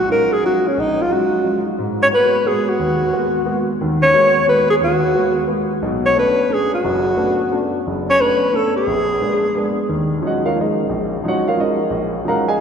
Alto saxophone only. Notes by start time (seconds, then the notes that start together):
0.12 A#4
0.33 G#4
0.46 F#4
0.68 C#4
0.80 D#4
1.02 F4
1.13 F#4
2.03 C#5
2.15 B4
2.47 G#4
2.69 F#4
4.02 C#5
4.49 B4
4.70 G#4
4.84 F#4
6.06 C#5
6.19 B4
6.54 G#4
6.74 F#4
8.11 C#5
8.21 B4
8.56 A4
8.76 G#4